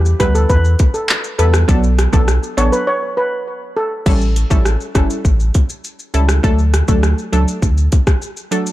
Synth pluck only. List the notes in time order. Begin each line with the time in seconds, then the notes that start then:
0.20 G3 B3 E4 B4
1.38 G3 B3 E4 B4
1.68 F#3 B3 D4 A4
2.13 F#3 B3 D4 A4
2.57 F#3 B3 D4 A4
4.06 G3 C#4 E4 A4
4.50 G3 C#4 E4 A4
4.95 G3 C#4 E4 A4
6.14 G3 C#4 E4 A4
6.43 F#3 A3 D4 A4
6.88 F#3 A3 D4 A4
7.32 F#3 A3 D4 A4
8.51 F#3 A3 D4 A4